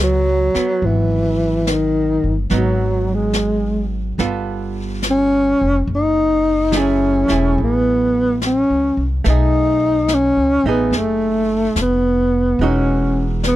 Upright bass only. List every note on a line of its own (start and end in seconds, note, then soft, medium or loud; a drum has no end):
0.00 0.51 C#2 medium
0.55 muted upright bass stroke soft
0.82 2.19 G#1 medium
2.24 2.49 G1 medium
2.51 4.15 G#1 medium
4.18 5.56 G1 medium
5.61 5.87 F1 medium
5.87 7.25 F#1 medium
7.30 7.55 E1 medium
7.58 8.65 A1 medium
8.70 8.95 C#2 soft
8.97 9.23 C2 medium
9.26 10.32 B1 medium
10.37 10.62 C#2 soft
10.64 10.89 A1 medium
10.91 11.70 F#1 medium
11.76 12.55 F1 medium
12.59 13.56 E1 medium